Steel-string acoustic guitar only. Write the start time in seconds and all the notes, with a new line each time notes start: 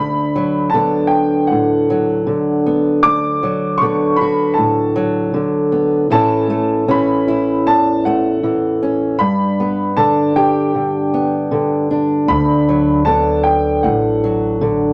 Already playing: D2 D3
0.35 F#3
0.74 D3 B3
1.51 A2
1.90 F#3
2.27 D3
2.66 B3
3.04 D2
3.43 F#3
3.81 D3 B3
4.21 F#4
4.58 A2
4.96 F#3
5.34 D3
5.72 B3
6.10 A2 E3 A3 C#4 E4
6.50 A3
6.88 E3 C#4
7.28 E4
7.66 E2
8.06 A3
8.43 E3
8.83 C#4
9.20 G2
9.60 B3
9.97 D3 D4
10.36 G4
10.74 D3
11.14 B3
11.51 D3
11.91 D4
12.29 D2
12.69 F#3
13.07 D3 B3
13.85 A2
14.24 F#3
14.61 D3